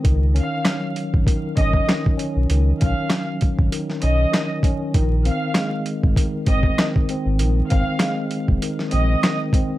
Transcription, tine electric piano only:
X:1
M:4/4
L:1/8
Q:"Swing 16ths" 1/4=98
K:Bbm
V:1 name="Tine electric piano" clef=bass
E, D G,2 E, D E, D | E, D G,2 E, D E, D | E, C A,2 E, C E, C | E, C A,2 E, C E, C |]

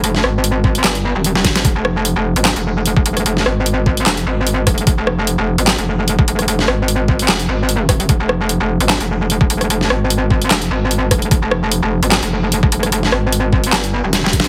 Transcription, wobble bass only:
X:1
M:4/4
L:1/16
Q:"Swing 16ths" 1/4=149
K:Fm
V:1 name="Wobble bass" clef=bass
F,,,2 A,,,6 G,,,3 E,,,2 E,,,2 A,,, | F,,, F,,,4 F,,,2 A,,,2 F,,,4 F,,, F,,,2 | F,,,2 A,,,6 F,,,2 A,,,4 F,,,2 | F,,, F,,,4 F,,,2 A,,,2 F,,,4 F,,, F,,,2 |
F,,,2 A,,,6 F,,,2 A,,,4 E,,,2 | F,,, F,,,4 F,,,2 A,,,2 F,,,4 F,,, F,,,2 | F,,,2 A,,,6 F,,,2 A,,,4 F,,,2 | F,,, F,,,4 F,,,2 A,,,2 F,,,4 F,,, F,,,2 |
F,,,2 A,,,6 G,,,3 E,,,2 E,,,2 A,,, |]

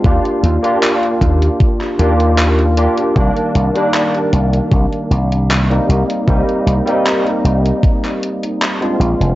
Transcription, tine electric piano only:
X:1
M:4/4
L:1/16
Q:1/4=77
K:Fdor
V:1 name="Tine electric piano"
[B,DFG]3 [B,DFG]6- [B,DFG] [B,DFG]4 [B,DFG]2 | [E,G,B,D]3 [E,G,B,D]8- [E,G,B,D]2 [G,B,CE]3 | [G,B,CE]3 [G,B,CE]8- [G,B,CE]2 [A,CDF]3 |]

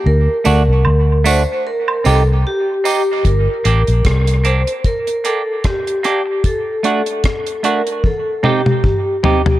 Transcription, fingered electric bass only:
X:1
M:4/4
L:1/16
Q:"Swing 16ths" 1/4=75
K:Gm
V:1 name="Fingered electric bass" clef=bass
D,, z D,, C,, D,,3 z3 C,,2 z4 | G,,, z A,,, B,,, C,,3 z8 z | z16 |]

